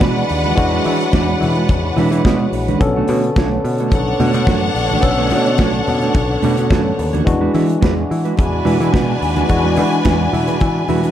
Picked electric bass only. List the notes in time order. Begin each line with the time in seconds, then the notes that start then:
0.02 B2
0.31 D#2
0.58 E2
0.86 E3
1.14 E2
1.41 E3
1.70 E2
1.97 E3
2.11 E3
2.25 B2
2.52 A#1
2.81 B1
3.09 B2
3.37 B1
3.64 B2
3.92 B1
4.20 B2
4.34 B2
4.47 F#2
4.75 A#1
5.03 B1
5.31 B2
5.59 B1
5.88 B2
6.15 B1
6.45 B2
6.58 B2
6.71 F#2
6.99 D#2
7.27 E2
7.55 E3
7.83 E2
8.11 E3
8.39 E2
8.66 E3
8.80 E3
8.94 B2
9.22 D#2
9.50 E2
9.77 E3
10.05 E2
10.33 E3
10.62 E3
10.89 E3